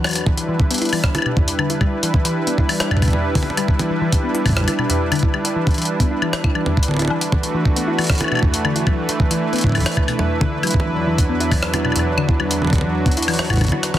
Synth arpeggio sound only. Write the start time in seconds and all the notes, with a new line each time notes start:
0.04 E3
0.26 E3
0.37 E3
0.49 E3
0.71 B3
0.82 E4
0.93 E3
1.15 E4
1.26 B2
1.37 E2
1.59 D3
1.70 E4
1.81 G3
2.03 E3
2.14 E3
2.25 E3
2.47 B3
2.58 E4
2.69 E3
2.91 E4
3.02 B2
3.13 E2
3.35 D3
3.46 E4
3.57 G3
3.79 E3
3.90 E3
4.02 E3
4.24 B3
4.35 E4
4.46 E3
4.68 E4
4.79 B2
4.90 E2
5.12 D3
5.23 E4
5.34 G3
5.56 E3
5.67 E3
5.78 E3
6.00 B3
6.11 E4
6.22 E3
6.44 E4
6.55 E3
6.66 E2
6.88 D3
6.99 E4
7.10 E3
7.32 E3
7.43 E3
7.54 E3
7.77 B3
7.88 E4
7.99 E3
8.21 E4
8.32 B2
8.43 E2
8.65 D3
8.76 E4
8.87 F#3
9.09 E3
9.20 E3
9.31 E3
9.53 B3
9.64 E4
9.75 E3
9.97 E4
10.08 B2
10.19 E2
10.41 D3
10.52 E4
10.63 F#3
10.85 E3
10.96 E3
11.07 E3
11.29 B3
11.40 E4
11.52 E3
11.74 E4
11.85 B2
11.96 E2
12.18 D3
12.29 E4
12.40 F#3
12.62 E3
12.73 E3
12.84 E3
13.06 B3
13.17 E4
13.28 E3
13.50 E4
13.61 D3
13.72 E4
13.94 E3